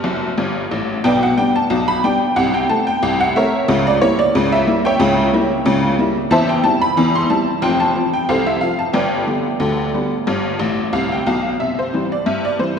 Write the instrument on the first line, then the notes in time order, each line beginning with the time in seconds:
honky-tonk piano
Already playing: G4 D5 G5
0.04 F#1 F#2
0.38 G1 G2
0.71 A1 A2
1.04 B1 B2 B4 D5 G5
1.23 F#5
1.37 G3 B3 D4 G5
1.56 A5
1.70 B1 B2
1.88 B5
2.04 G3 B3 D4 G5
2.36 C2 C3 F#5
2.54 G5
2.69 A3 C4 A5
2.87 G5
3.02 C2 C3
3.21 F#5
3.36 A3 C4 A#4 C#5 E5
3.68 C#2 C#3
3.87 D5
4.02 G3 A#3 E4 C#5
4.19 D5
4.35 C#2 C#3
4.52 E5
4.67 G3 A#3 E4
4.85 C#5 E5 G5
4.99 C#2 C#3
5.33 G3 A#3 E4
5.66 C#2 C#3
5.99 G3 A#3 E4
6.31 E2 E3 C5 E5 A5
6.49 G5
6.64 G3 C4 E4 A5
6.82 B5
6.97 E2 E3
7.15 C6
7.30 G3 C4 E4 A5
7.62 F1 F2 G5
7.80 A5
7.95 F3 C4
8.14 G5
8.29 C2 C3 A4 C5 F5
8.47 E5
8.61 F3 C4 F5
8.79 A5
8.93 G1 G2 B4 D5 G5
9.27 D3 G3 B3
9.60 D2 D3
9.94 D3 G3 B3
10.27 G1 G2
10.59 A1 A2
10.93 C2 C3 F5
11.12 G5
11.27 B1 B2 F5
11.60 C3 E5
11.79 C5
11.94 E3 G3 C4
12.12 D5
12.26 G2 E5
12.45 D5
12.59 E3 G3 C4 C5